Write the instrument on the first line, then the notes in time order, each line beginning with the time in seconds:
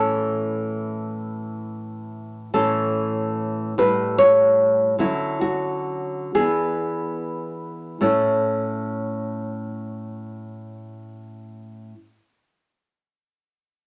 nylon-string guitar
Already playing: A2 E3 C#4 A4
2.54 A2 E3 C#4 A4
3.78 A2 G3 E4 B4
4.18 C#5
4.99 D3 F#3 C#4 E4
5.41 F#4
6.35 E3 B3 D4 G#4
8.01 A2 C#4 E4 A4 C#5